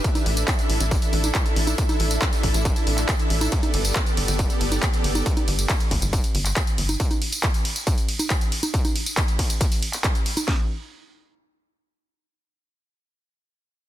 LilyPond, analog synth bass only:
\new Staff \with { instrumentName = "Analog synth bass" } { \clef bass \time 4/4 \key g \major \tempo 4 = 138 r8 a,,8 r8 a,,16 a,,8 r16 a,,8 r8 a,,8 | r8 a,,8 r8 a,,16 a,,8 r16 a,,8 r8 a,,8 | r8 g,,8 r8 g,,16 g,,8 r16 g,,8 r8 g,,8 | r8 g,,8 r8 g,,16 g,,8 r16 g,,8 r8 g,,8 |
r1 | r1 | r1 | r1 | }